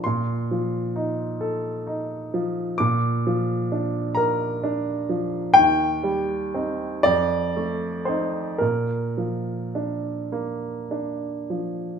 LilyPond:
<<
  \new Staff \with { instrumentName = "Grand piano" } { \time 12/8 \key bes \major \tempo 4. = 42 c'''2. d'''4. bes''8 r4 | g''4. d''4 c''8 bes'2~ bes'8 r8 | }
  \new Staff \with { instrumentName = "Grand piano" } { \time 12/8 \key bes \major bes,8 f8 ees'8 a'8 ees'8 f8 bes,8 f8 d'8 bes'8 d'8 f8 | ees,8 g8 <c' ees'>8 f,8 a8 <c' ees'>8 bes,8 f8 d'8 bes8 d'8 f8 | }
>>